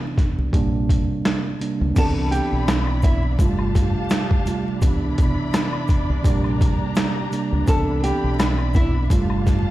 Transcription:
Already playing: C3 E3 B3 D4
0.18 kick, snare, closed hi-hat
0.38 C2
0.52 A#1 C3 G3 A#3 D4, kick, closed hi-hat
0.89 kick, closed hi-hat
1.25 cross-stick, snare, closed hi-hat
1.59 C3 G3 A#3 D4, closed hi-hat
1.81 C#2
1.95 C2 E3 B3 C4 D4 E4 D5 A5 B5, kick, closed hi-hat, crash, shaker
1.99 A4
2.31 G4 G5, closed hi-hat, shaker
2.53 B1
2.68 cross-stick, snare, closed hi-hat, high woodblock, shaker
2.87 high woodblock
3.02 E4 E5, kick, closed hi-hat, shaker
3.38 G1 C3 G3 A3 F4 G4 F5 A5, kick, closed hi-hat, shaker
3.59 high woodblock
3.75 kick, snare, closed hi-hat, shaker
4.10 cross-stick, snare, closed hi-hat, shaker
4.31 kick
4.45 C3 G3 A3 F4, closed hi-hat, shaker
4.79 C2 C3 E3 B3 E4 D5 B5, kick, closed hi-hat, shaker
4.84 D4
5.18 B1, kick, closed hi-hat, shaker
5.54 cross-stick, snare, closed hi-hat, high woodblock, shaker
5.73 high woodblock
5.88 kick, closed hi-hat, shaker
6.10 C2
6.24 A#1 C3 G3 A#3 D4 G4 A#5, kick, closed hi-hat, shaker
6.44 high woodblock
6.61 kick, closed hi-hat, shaker
6.95 cross-stick, snare, closed hi-hat, shaker
7.30 C3 G3 A#3 D4, closed hi-hat, shaker
7.52 C#2
7.66 C2 E3 B3 C4 D4 E4 A4 D5 A5 B5, kick, closed hi-hat, shaker
8.03 G4 G5, closed hi-hat, shaker
8.24 B1
8.39 cross-stick, snare, closed hi-hat, high woodblock, shaker
8.58 high woodblock
8.73 E4 E5, kick, closed hi-hat, shaker
9.10 G1 C3 G3 A3 F4 G4 F5 A5, kick, closed hi-hat, shaker
9.30 high woodblock
9.47 kick, snare, closed hi-hat, shaker

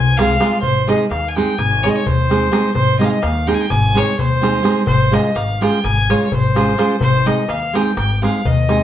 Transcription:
Already playing: C2 G#5
0.17 G#3 C4 F4 G#4 F5, darbuka tek
0.40 G#3 C4 F4 G#4, darbuka tek
0.60 G#1 C5, darbuka dum
0.87 G#3 C4 D#4 G#4 D#5, darbuka tek
1.00 darbuka tek
1.10 D#2 F5, darbuka tek
1.28 G#5
1.35 G#3 C4 D#4 G#4 G5, darbuka tek
1.58 G#1 G#5, darbuka tek, darbuka dum
1.72 darbuka tek
1.83 G#3 C4 D#4 G#4 C#5, darbuka tek
1.89 D#5
1.95 C#5
2.06 D#2 C5, darbuka dum
2.19 darbuka tek
2.30 G#3 C4 D#4 G#4, darbuka tek
2.52 G#3 C4 D#4 G#4, darbuka tek
2.64 darbuka tek
2.74 G#1 C5, darbuka dum
2.99 G#3 C4 D#4 G#4 D#5, darbuka tek
3.05 F5
3.10 D#5, darbuka tek
3.22 D#2 F5, darbuka tek
3.47 G#3 C4 D#4 G#4 G5, darbuka tek
3.54 G#5
3.60 G5
3.70 G#1 G#5, darbuka tek, darbuka dum
3.84 darbuka tek
3.94 G#3 C4 D#4 G#4 C#5, darbuka tek
4.19 D#2 C5, darbuka dum
4.31 darbuka tek
4.41 G#3 C4 D#4 G#4, darbuka tek
4.63 G#3 C4 D#4 G#4, darbuka tek
4.77 darbuka tek
4.87 G#1 C5, darbuka dum
5.11 G#3 C#4 F4 G#4 D#5, darbuka tek
5.25 darbuka tek
5.35 G#1 F5, darbuka tek
5.61 G#3 C#4 F4 G#4 G5, darbuka tek
5.84 G#1 G#5, darbuka tek, darbuka dum
5.98 darbuka tek
6.09 G#3 C#4 F4 G#4 C#5, darbuka tek
6.32 G#1 C5, darbuka dum
6.44 darbuka tek
6.55 G#3 C#4 F4 G#4, darbuka tek
6.78 G#3 C#4 F4 G#4, darbuka tek
6.90 darbuka tek
7.00 G#1 C5, darbuka dum
7.14 darbuka tek
7.25 G#3 C4 D#4 G#4 D#5, darbuka tek
7.38 darbuka tek
7.48 D#2 F5, darbuka tek
7.63 darbuka tek
7.73 G#3 C4 D#4 G#4 G5, darbuka tek
7.97 G#1 G5, darbuka tek
8.11 darbuka tek
8.22 G#3 C4 D#4 G#4 F5, darbuka tek
8.45 D#2 D#5, darbuka dum
8.57 darbuka tek
8.68 G#3 C4 D#4 G#4, darbuka tek
8.80 darbuka tek

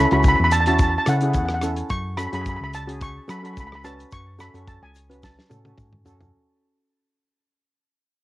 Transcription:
0.05 B5
0.11 C#2 C#4 E4 F#4 B5, closed hi-hat
0.20 B5, shaker
0.24 kick, closed hi-hat
0.28 B5
0.36 E2 B5
0.44 B5
0.51 A5, closed hi-hat, shaker
0.60 A5
0.66 C#4 E4 F#4 A5, closed hi-hat, shaker
0.74 A5
0.79 A5, kick, closed hi-hat, shaker
0.90 A5
0.98 A5
1.06 C#3 C#4 E4 A4 F#5, cross-stick, closed hi-hat, shaker
1.17 F#5
1.21 C#4 E4 G#4 F#5, closed hi-hat
1.31 F#5, closed hi-hat, shaker
1.35 E2 F#5, kick
1.45 F#5, cross-stick
1.54 F#5
1.62 C#4 E4 A4, cross-stick, closed hi-hat, shaker
1.76 closed hi-hat, shaker
1.90 F#2 C#6, kick, closed hi-hat, shaker
2.17 C#4 F#4 A4 B5, cross-stick, closed hi-hat, shaker
2.27 B5
2.32 F#2 C#4 F#4 G#4 B5, closed hi-hat
2.41 B5, shaker
2.46 B5, kick, closed hi-hat
2.56 B5
2.61 C#2 B5
2.73 A5, closed hi-hat, shaker
2.87 C#4 F#4 G#4, closed hi-hat, shaker
3.01 C#6, kick, closed hi-hat, shaker
3.28 F#3 C#4 F#4 A4 B5, cross-stick, closed hi-hat, shaker
3.38 B5
3.43 C#4 F#4 A4 B5, closed hi-hat
3.53 C#2 B5, kick, shaker
3.57 B5, closed hi-hat
3.67 B5
3.72 B5, cross-stick
3.84 C#4 F#4 B4 A5, cross-stick, closed hi-hat, shaker
3.99 closed hi-hat, shaker
4.11 F#2 C#6, kick, closed hi-hat, shaker
4.39 C#4 F#4 A4 B5, cross-stick, closed hi-hat, shaker
4.54 F#2 C#4 F#4 A4, closed hi-hat, shaker
4.68 A5, kick, closed hi-hat, shaker
4.82 C#2 G#5
4.95 closed hi-hat, shaker
5.09 C#4 F#4 B4, closed hi-hat, shaker
5.23 A5, kick, snare, shaker
5.39 snare
5.50 A2 C#4 F#4 A4, high tom, shaker
5.65 C#4 F#4 A4, high tom, shaker
5.78 G#2, kick, mid tom, shaker
5.93 mid tom
6.05 F#2 C#4 F#4 A4, floor tom, shaker
6.21 floor tom, shaker

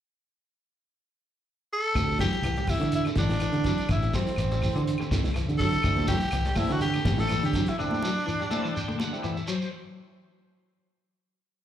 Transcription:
1.73 A4
1.95 D2 D3 A3 C4 G4, muted clean electric guitar stroke, kick, closed hi-hat, claves, shekere
2.08 A3 C4 G4, shekere
2.19 E3 F#3 A3 C4 G4, kick, snare, closed hi-hat, shekere
2.32 muted fingered electric bass stroke, closed hi-hat, shekere
2.42 C2 E3, closed hi-hat, claves, shekere
2.56 G3 A3 C4 G4, closed hi-hat, shekere
2.67 E3 A3 C4 E4 G4, kick, open hi-hat, claves, shekere
2.80 D3 E3, snare, closed hi-hat
2.84 shekere
2.92 E4, closed hi-hat, shekere
3.05 D3 A3 C4 G4, closed hi-hat, claves, shekere
3.16 A1 D3 E3 A3 C4 D4 G4, kick, snare, closed hi-hat, shekere
3.29 snare, closed hi-hat, shekere
3.40 E3, closed hi-hat, claves, shekere
3.52 D3 A3 C4 G4, closed hi-hat, shekere
3.64 E3 F#3 A3 C4 G4, kick, snare, closed hi-hat, shekere
3.78 closed hi-hat, shekere
3.89 A1 D3 E4, kick, closed hi-hat, claves, shekere
4.02 A3 C4 G4, closed hi-hat, shekere
4.13 E3 F#3 A3 C4 G4, kick, snare, closed hi-hat, shekere
4.27 snare, closed hi-hat, shekere
4.36 A1 E3, closed hi-hat, claves, shekere
4.51 G3 A3 G4, closed hi-hat, shekere
4.62 E3 A3 C4 G4, kick, open hi-hat, claves, shekere
4.76 D3 E3, closed hi-hat, shekere
4.87 closed hi-hat, shekere
4.98 D3 A3 C4 G4, muted fingered electric bass stroke, closed hi-hat, claves, shekere
5.11 C2 D3 E3 A3 C4 G4, kick, snare, closed hi-hat, shekere
5.24 snare, closed hi-hat, shekere
5.34 E3, snare, closed hi-hat, claves, shekere
5.49 D3 A3 C4 G4, closed hi-hat, shekere
5.58 E3 F#3 A3 C4 G4 A4, kick, open hi-hat, shekere
5.74 closed hi-hat, shekere
5.83 D2 D3 G3 A3 C4 E4, kick, closed hi-hat, claves, shekere
5.97 A3 C4 G4, high conga, shekere
6.07 E3 F#3 A3 C4 G4, kick, snare, closed hi-hat, high conga, shekere
6.21 muted fingered electric bass stroke, closed hi-hat, shekere
6.31 C2 E3, closed hi-hat, claves, shekere
6.45 G3 A3 C4 G4, snare, closed hi-hat, shekere
6.55 E3 G3 A3 C4 E4 G4, kick, snare, open hi-hat, high conga, claves, shekere
6.69 D3 E3 F#4, snare, closed hi-hat, shekere
6.80 G4, snare, closed hi-hat, shekere
6.94 D3 A3 C4 G4, closed hi-hat, claves, shekere
7.05 A1 D3 E3 A3 C4 G4, kick, snare, closed hi-hat, high conga, shekere
7.18 G3 A3 C4 E4 A4, snare, closed hi-hat, shekere
7.29 E3, closed hi-hat, high conga, claves, shekere
7.43 D3 A3 C4 G4, snare, closed hi-hat, shekere
7.53 E3 F#3 A3 C4, kick, snare, closed hi-hat, shekere
7.66 E4, snare, closed hi-hat, shekere
7.79 D3 G3 A3 C4 D4 E4, shekere
7.91 high conga, shekere
8.02 F#3, high conga, shekere
8.18 shekere
8.26 E3, shekere
8.40 G3, shekere
8.50 G3 A3 C4 E4 A5, high conga, shekere
8.64 E3, shekere
8.75 G5, shekere
8.88 D3, high conga, shekere
8.99 D3 F#5, high conga, shekere
9.12 G3 A3 C4 E4, shekere
9.23 E3 E5, shekere
9.37 shekere
9.48 F#3 C5, shekere
9.62 shekere

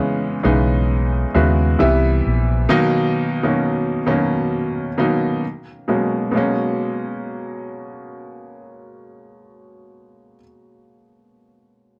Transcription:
Already playing: C#3 E3 G#3 B3 C#4 D#4
0.43 B1 C#3 E3 G#3 B3 D#4
1.34 D#2 C#3 G#3 B3 E4 F#4
1.79 C2 C3 E3 G3 B3 E4
2.26 A#1
2.69 B2 D#3 F#3 A#3 D#4
3.43 B2 D#3 F#3 A#3 C#4
4.06 B2 D#3 F#3 A#3 C#4
4.98 B2 D#3 F#3 A#3 D#4
5.88 B2 F#3 G#3 A#3 C#4
6.31 B2 F#3 G#3
6.35 A#3 C#4

